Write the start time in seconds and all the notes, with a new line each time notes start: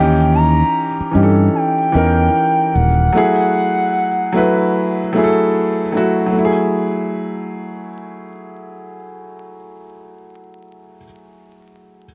Already playing: D#2 E3 C#4 D#4 G4 G5
0.35 A#5
1.01 muted fingered electric bass stroke
1.11 G2 E3 C#4 D#4
1.16 G4
1.23 A4
1.55 G5
1.92 E2 E3 C#4 D#4
1.97 A#4
2.74 D#1 F#5
3.13 F#3 A3 E4
3.17 G#4
4.33 F#3 A3 E4
4.37 B4
5.13 F#3 A3 E4
5.17 G#4
5.24 A4
5.92 F#3 A3 E4
5.97 F#4
6.26 F#3
6.32 A3
6.39 E4
6.45 G#4